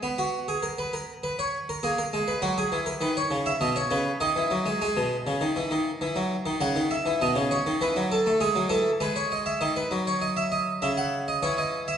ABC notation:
X:1
M:4/4
L:1/16
Q:1/4=100
K:Bmix
V:1 name="Harpsichord"
z F2 G ^A B A2 B c2 A G A2 B | F G2 ^A B c2 e d c B2 d4 | g12 f2 e2 | d2 c2 B2 A2 G2 A2 B c d e |
d B2 c d e d2 e f2 d c d2 e |]
V:2 name="Harpsichord" clef=bass
B,12 ^A,2 G,2 | F,2 E,2 D,2 C,2 B,,2 C,2 D, E, F, G, | G, B,,2 C, D, E, D,2 E, F,2 D, C, D,2 E, | B,, C,2 D, E, F,2 A, G, F, E,2 G,4 |
D,2 F,6 C,4 E,4 |]